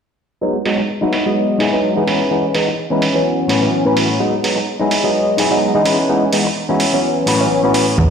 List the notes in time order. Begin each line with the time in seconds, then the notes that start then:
0.41 F#3 G#3 B3 D#4
0.65 F#3 G#3 B3 D#4, open hi-hat
0.78 muted clean electric guitar stroke
0.88 muted clean electric guitar stroke
1.01 F#3 G#3 B3 D#4 E4 F#4
1.13 open hi-hat
1.25 F#3 G#3 B3 D#5
1.59 D#4 E4 G#4, open hi-hat
1.73 F#3 G#3 B3 D#4
1.96 E3 G#3 B3 D#4 E4 G#4
2.06 C#4 E4 B4, open hi-hat
2.30 E3 G#3 B3 D#4
2.54 E3 G#3 B3 D#4, open hi-hat
2.67 muted clean electric guitar stroke
2.77 muted clean electric guitar stroke
2.90 E3 G#3 B3 C#4 D#4 E4 B4
3.02 open hi-hat
3.14 E3 F#3 B3 C#4
3.48 A2 C#4 F#4 B4, open hi-hat
3.61 E3 F#3 B3 C#4
3.85 A2 E3 F#3 B3 C#4 F#4 B4
3.97 open hi-hat
4.20 F#3 G#3 B3 D#4
4.43 F#3 G#3 B3 D#4, open hi-hat
4.56 muted clean electric guitar stroke
4.67 muted clean electric guitar stroke
4.79 F#3 G#3 B3 D#4 E4 G#4
4.91 open hi-hat
5.04 F#3 G#3 B3 D#5
5.37 D#4 E4 G#4, open hi-hat
5.51 F#3 G#3 B3 D#4
5.74 E3 G#3 B3 D#4 E4 G#4
5.85 C#4 E4 B4, open hi-hat
6.09 E3 G#3 B3 D#4
6.32 E3 G#3 B3 D#4, open hi-hat
6.45 muted clean electric guitar stroke
6.56 muted clean electric guitar stroke
6.69 E3 G#3 B3 C#4 D#4 E4 F#4
6.80 open hi-hat
6.93 E3 F#3 B3 C#4
7.26 A2 C#4 F#4 B4, open hi-hat
7.40 E3 F#3 B3 C#4
7.63 A2 E3 F#3 B3 C#4 F#4 B4
7.74 open hi-hat
7.98 E2 F#3 G#3 B3 D#4, kick